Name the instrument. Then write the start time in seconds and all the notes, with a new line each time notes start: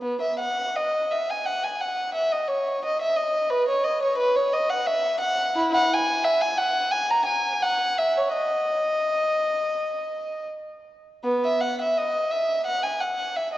violin
0.02 B3
0.21 E5
0.39 F#5
0.76 D#5
1.11 E5
1.30 G#5
1.46 F#5
1.64 G#5
1.81 F#5
2.14 E5
2.32 D#5
2.48 C#5
2.85 D#5
3.02 E5
3.17 D#5
3.50 B4
3.68 C#5
3.84 D#5
4.02 C#5
4.17 B4
4.35 C#5
4.53 D#5
4.70 F#5
4.86 E5
5.20 F#5
5.56 E4
5.74 F#5
5.93 G#5
6.24 E5
6.41 G#5
6.58 F#5
6.91 G#5
7.11 A#5
7.25 G#5
7.62 F#5
7.98 E5
8.17 C#5
8.33 D#5
11.24 B3
11.44 E5
11.60 F#5
11.81 E5
11.97 D#5
12.31 E5
12.66 F#5
12.83 G#5
13.00 F#5
13.36 E5
13.53 D#5